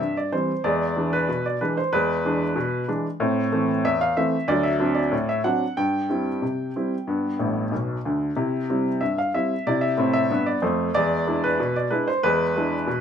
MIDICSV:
0, 0, Header, 1, 2, 480
1, 0, Start_track
1, 0, Key_signature, 0, "major"
1, 0, Tempo, 643777
1, 469, Time_signature, 2, 2, 24, 8
1, 9697, End_track
2, 0, Start_track
2, 0, Title_t, "Upright piano"
2, 0, Program_c, 0, 0
2, 0, Note_on_c, 0, 76, 74
2, 10, Note_on_c, 0, 43, 56
2, 118, Note_off_c, 0, 76, 0
2, 129, Note_on_c, 0, 74, 65
2, 205, Note_off_c, 0, 43, 0
2, 239, Note_off_c, 0, 74, 0
2, 242, Note_on_c, 0, 52, 36
2, 242, Note_on_c, 0, 72, 65
2, 246, Note_on_c, 0, 55, 31
2, 251, Note_on_c, 0, 60, 39
2, 371, Note_off_c, 0, 52, 0
2, 374, Note_off_c, 0, 55, 0
2, 377, Note_off_c, 0, 60, 0
2, 476, Note_off_c, 0, 72, 0
2, 477, Note_on_c, 0, 74, 80
2, 478, Note_on_c, 0, 40, 76
2, 494, Note_on_c, 0, 56, 47
2, 596, Control_c, 0, 64, 127
2, 619, Note_off_c, 0, 56, 0
2, 678, Note_off_c, 0, 40, 0
2, 720, Note_on_c, 0, 52, 43
2, 721, Note_on_c, 0, 56, 43
2, 728, Note_on_c, 0, 62, 40
2, 833, Note_off_c, 0, 74, 0
2, 841, Note_on_c, 0, 71, 76
2, 849, Note_off_c, 0, 52, 0
2, 850, Note_off_c, 0, 56, 0
2, 854, Note_off_c, 0, 62, 0
2, 959, Control_c, 0, 64, 0
2, 960, Note_on_c, 0, 47, 55
2, 1075, Note_off_c, 0, 71, 0
2, 1087, Note_on_c, 0, 74, 70
2, 1159, Note_off_c, 0, 47, 0
2, 1197, Note_off_c, 0, 74, 0
2, 1200, Note_on_c, 0, 71, 62
2, 1201, Note_on_c, 0, 52, 43
2, 1207, Note_on_c, 0, 56, 35
2, 1208, Note_on_c, 0, 62, 41
2, 1314, Note_off_c, 0, 71, 0
2, 1323, Note_on_c, 0, 72, 65
2, 1329, Note_off_c, 0, 52, 0
2, 1333, Note_off_c, 0, 56, 0
2, 1334, Note_off_c, 0, 62, 0
2, 1435, Note_off_c, 0, 72, 0
2, 1436, Note_on_c, 0, 71, 81
2, 1438, Note_on_c, 0, 40, 73
2, 1452, Note_on_c, 0, 56, 49
2, 1555, Control_c, 0, 64, 127
2, 1576, Note_off_c, 0, 56, 0
2, 1637, Note_off_c, 0, 40, 0
2, 1680, Note_on_c, 0, 52, 40
2, 1685, Note_on_c, 0, 56, 45
2, 1687, Note_on_c, 0, 62, 47
2, 1808, Note_off_c, 0, 52, 0
2, 1812, Note_off_c, 0, 56, 0
2, 1813, Note_off_c, 0, 62, 0
2, 1906, Note_on_c, 0, 47, 69
2, 1913, Control_c, 0, 64, 0
2, 2110, Note_off_c, 0, 47, 0
2, 2149, Note_on_c, 0, 52, 41
2, 2149, Note_on_c, 0, 56, 43
2, 2150, Note_off_c, 0, 71, 0
2, 2152, Note_on_c, 0, 62, 49
2, 2279, Note_off_c, 0, 56, 0
2, 2280, Note_off_c, 0, 52, 0
2, 2281, Note_off_c, 0, 62, 0
2, 2386, Note_on_c, 0, 45, 80
2, 2400, Note_on_c, 0, 60, 58
2, 2520, Control_c, 0, 64, 127
2, 2527, Note_off_c, 0, 60, 0
2, 2588, Note_off_c, 0, 45, 0
2, 2625, Note_on_c, 0, 52, 44
2, 2626, Note_on_c, 0, 57, 47
2, 2632, Note_on_c, 0, 60, 49
2, 2756, Note_off_c, 0, 52, 0
2, 2757, Note_off_c, 0, 57, 0
2, 2761, Note_off_c, 0, 60, 0
2, 2867, Note_on_c, 0, 40, 65
2, 2868, Control_c, 0, 64, 0
2, 2869, Note_on_c, 0, 76, 86
2, 2985, Note_off_c, 0, 76, 0
2, 2991, Note_on_c, 0, 77, 84
2, 3068, Note_off_c, 0, 40, 0
2, 3106, Note_off_c, 0, 77, 0
2, 3108, Note_on_c, 0, 76, 72
2, 3109, Note_on_c, 0, 52, 40
2, 3110, Note_on_c, 0, 57, 44
2, 3112, Note_on_c, 0, 60, 51
2, 3238, Note_off_c, 0, 52, 0
2, 3239, Note_off_c, 0, 57, 0
2, 3241, Note_off_c, 0, 60, 0
2, 3340, Note_on_c, 0, 38, 87
2, 3341, Note_on_c, 0, 74, 88
2, 3344, Note_off_c, 0, 76, 0
2, 3358, Note_on_c, 0, 54, 57
2, 3455, Note_on_c, 0, 76, 71
2, 3460, Note_off_c, 0, 74, 0
2, 3485, Note_off_c, 0, 54, 0
2, 3488, Control_c, 0, 64, 127
2, 3544, Note_off_c, 0, 38, 0
2, 3574, Note_on_c, 0, 54, 44
2, 3580, Note_on_c, 0, 60, 40
2, 3580, Note_on_c, 0, 62, 53
2, 3687, Note_on_c, 0, 74, 68
2, 3697, Note_off_c, 0, 76, 0
2, 3707, Note_off_c, 0, 54, 0
2, 3712, Note_off_c, 0, 60, 0
2, 3712, Note_off_c, 0, 62, 0
2, 3815, Note_on_c, 0, 45, 60
2, 3829, Control_c, 0, 64, 0
2, 3934, Note_off_c, 0, 74, 0
2, 3943, Note_on_c, 0, 76, 66
2, 4022, Note_off_c, 0, 45, 0
2, 4058, Note_on_c, 0, 78, 76
2, 4059, Note_on_c, 0, 54, 42
2, 4063, Note_off_c, 0, 76, 0
2, 4064, Note_on_c, 0, 60, 40
2, 4067, Note_on_c, 0, 62, 45
2, 4193, Note_off_c, 0, 54, 0
2, 4196, Note_off_c, 0, 60, 0
2, 4198, Note_off_c, 0, 62, 0
2, 4301, Note_off_c, 0, 78, 0
2, 4303, Note_on_c, 0, 79, 81
2, 4304, Note_on_c, 0, 43, 71
2, 4447, Control_c, 0, 64, 127
2, 4509, Note_off_c, 0, 43, 0
2, 4543, Note_on_c, 0, 55, 41
2, 4549, Note_on_c, 0, 64, 46
2, 4550, Note_on_c, 0, 60, 35
2, 4677, Note_off_c, 0, 55, 0
2, 4681, Note_off_c, 0, 64, 0
2, 4682, Note_off_c, 0, 60, 0
2, 4788, Note_on_c, 0, 48, 50
2, 4795, Control_c, 0, 64, 0
2, 4993, Note_off_c, 0, 48, 0
2, 5040, Note_on_c, 0, 55, 37
2, 5042, Note_on_c, 0, 60, 38
2, 5044, Note_on_c, 0, 64, 37
2, 5169, Note_off_c, 0, 55, 0
2, 5171, Note_off_c, 0, 60, 0
2, 5172, Note_off_c, 0, 64, 0
2, 5274, Note_on_c, 0, 43, 62
2, 5288, Note_on_c, 0, 59, 43
2, 5416, Note_off_c, 0, 59, 0
2, 5424, Control_c, 0, 64, 127
2, 5477, Note_off_c, 0, 43, 0
2, 5511, Note_on_c, 0, 45, 52
2, 5515, Note_on_c, 0, 33, 49
2, 5692, Note_off_c, 0, 45, 0
2, 5694, Note_off_c, 0, 33, 0
2, 5752, Note_off_c, 0, 79, 0
2, 5753, Note_on_c, 0, 35, 52
2, 5755, Note_on_c, 0, 47, 52
2, 5761, Control_c, 0, 64, 0
2, 5934, Note_off_c, 0, 35, 0
2, 5935, Note_off_c, 0, 47, 0
2, 6004, Note_on_c, 0, 50, 53
2, 6005, Note_on_c, 0, 38, 59
2, 6182, Note_off_c, 0, 38, 0
2, 6182, Note_off_c, 0, 50, 0
2, 6236, Note_on_c, 0, 48, 73
2, 6250, Note_on_c, 0, 64, 48
2, 6378, Note_off_c, 0, 64, 0
2, 6402, Control_c, 0, 64, 127
2, 6441, Note_off_c, 0, 48, 0
2, 6484, Note_on_c, 0, 55, 42
2, 6486, Note_on_c, 0, 60, 43
2, 6488, Note_on_c, 0, 64, 45
2, 6614, Note_off_c, 0, 55, 0
2, 6616, Note_off_c, 0, 60, 0
2, 6617, Note_off_c, 0, 64, 0
2, 6715, Note_on_c, 0, 76, 65
2, 6720, Note_on_c, 0, 43, 53
2, 6723, Control_c, 0, 64, 0
2, 6837, Note_off_c, 0, 76, 0
2, 6848, Note_on_c, 0, 77, 74
2, 6924, Note_off_c, 0, 43, 0
2, 6963, Note_off_c, 0, 77, 0
2, 6966, Note_on_c, 0, 55, 31
2, 6968, Note_on_c, 0, 76, 65
2, 6973, Note_on_c, 0, 60, 37
2, 6974, Note_on_c, 0, 64, 37
2, 7096, Note_off_c, 0, 55, 0
2, 7101, Note_off_c, 0, 60, 0
2, 7102, Note_off_c, 0, 64, 0
2, 7203, Note_off_c, 0, 76, 0
2, 7208, Note_on_c, 0, 74, 81
2, 7209, Note_on_c, 0, 48, 68
2, 7224, Note_on_c, 0, 64, 61
2, 7316, Note_on_c, 0, 76, 70
2, 7323, Note_off_c, 0, 74, 0
2, 7352, Control_c, 0, 64, 127
2, 7396, Note_off_c, 0, 48, 0
2, 7406, Note_off_c, 0, 64, 0
2, 7436, Note_on_c, 0, 45, 61
2, 7453, Note_on_c, 0, 60, 64
2, 7545, Note_off_c, 0, 76, 0
2, 7556, Note_on_c, 0, 76, 85
2, 7628, Note_off_c, 0, 45, 0
2, 7638, Note_off_c, 0, 60, 0
2, 7679, Note_on_c, 0, 43, 60
2, 7683, Control_c, 0, 64, 0
2, 7691, Note_on_c, 0, 59, 61
2, 7796, Note_off_c, 0, 76, 0
2, 7801, Note_on_c, 0, 74, 72
2, 7870, Note_off_c, 0, 43, 0
2, 7877, Note_off_c, 0, 59, 0
2, 7919, Note_off_c, 0, 74, 0
2, 7919, Note_on_c, 0, 72, 66
2, 7920, Note_on_c, 0, 41, 58
2, 7930, Note_on_c, 0, 57, 67
2, 8110, Note_off_c, 0, 41, 0
2, 8116, Note_off_c, 0, 57, 0
2, 8157, Note_off_c, 0, 72, 0
2, 8160, Note_on_c, 0, 74, 97
2, 8161, Note_on_c, 0, 40, 79
2, 8179, Note_on_c, 0, 56, 49
2, 8294, Control_c, 0, 64, 127
2, 8304, Note_off_c, 0, 56, 0
2, 8362, Note_off_c, 0, 40, 0
2, 8403, Note_on_c, 0, 56, 40
2, 8405, Note_on_c, 0, 62, 45
2, 8409, Note_on_c, 0, 64, 52
2, 8517, Note_off_c, 0, 74, 0
2, 8527, Note_on_c, 0, 71, 81
2, 8532, Note_off_c, 0, 56, 0
2, 8534, Note_off_c, 0, 62, 0
2, 8537, Note_off_c, 0, 64, 0
2, 8642, Control_c, 0, 64, 0
2, 8648, Note_on_c, 0, 47, 68
2, 8760, Note_off_c, 0, 71, 0
2, 8770, Note_on_c, 0, 74, 72
2, 8846, Note_off_c, 0, 47, 0
2, 8876, Note_on_c, 0, 71, 67
2, 8877, Note_on_c, 0, 56, 38
2, 8881, Note_off_c, 0, 74, 0
2, 8882, Note_on_c, 0, 62, 43
2, 8886, Note_on_c, 0, 64, 50
2, 8994, Note_off_c, 0, 71, 0
2, 9004, Note_on_c, 0, 72, 81
2, 9008, Note_off_c, 0, 56, 0
2, 9011, Note_off_c, 0, 62, 0
2, 9014, Note_off_c, 0, 64, 0
2, 9118, Note_off_c, 0, 72, 0
2, 9122, Note_on_c, 0, 71, 91
2, 9125, Note_on_c, 0, 40, 79
2, 9137, Note_on_c, 0, 56, 59
2, 9262, Note_off_c, 0, 56, 0
2, 9268, Control_c, 0, 64, 127
2, 9323, Note_off_c, 0, 40, 0
2, 9365, Note_on_c, 0, 56, 54
2, 9369, Note_on_c, 0, 62, 52
2, 9373, Note_on_c, 0, 64, 51
2, 9493, Note_off_c, 0, 56, 0
2, 9496, Note_off_c, 0, 62, 0
2, 9499, Note_off_c, 0, 64, 0
2, 9598, Note_on_c, 0, 47, 67
2, 9600, Control_c, 0, 64, 0
2, 9697, Note_off_c, 0, 47, 0
2, 9697, Note_off_c, 0, 71, 0
2, 9697, End_track
0, 0, End_of_file